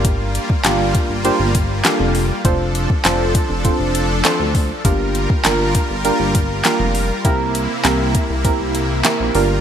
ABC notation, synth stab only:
X:1
M:4/4
L:1/8
Q:1/4=100
K:Gdor
V:1 name="Synth stab"
[B,DFGB] z [B,DFGB]2 [B,DFGc]2 [B,DFGA]2 | [CDFAc]2 [CDFAc]2 [CDFAc]2 [CDFAc]2 | [B,DFGB]2 [B,DFGB]2 [B,DFGB]2 [B,DFGB]2 | [B,CEGB]2 [B,CEGB]2 [B,CEGB]2 [B,CEGB] [B,DFGB] |]